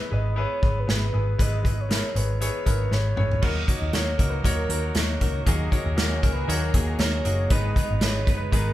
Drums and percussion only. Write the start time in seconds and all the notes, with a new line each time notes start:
0.63 kick
0.89 snare
1.39 kick, closed hi-hat
1.65 kick, closed hi-hat
1.91 snare, closed hi-hat
2.16 closed hi-hat
2.42 closed hi-hat
2.66 kick, closed hi-hat
2.92 snare
3.17 mid tom
3.31 floor tom
3.42 kick, crash
3.68 kick, closed hi-hat
3.93 snare, closed hi-hat
4.19 kick, closed hi-hat
4.44 kick, closed hi-hat
4.70 closed hi-hat
4.95 snare, closed hi-hat
5.21 kick, closed hi-hat
5.47 kick, closed hi-hat
5.72 kick, closed hi-hat
5.98 snare, closed hi-hat
6.23 kick, closed hi-hat
6.50 closed hi-hat
6.74 kick, closed hi-hat
6.99 snare, closed hi-hat
7.25 closed hi-hat
7.50 kick, closed hi-hat
7.76 kick, closed hi-hat
8.01 snare, closed hi-hat
8.27 kick, closed hi-hat
8.53 kick, closed hi-hat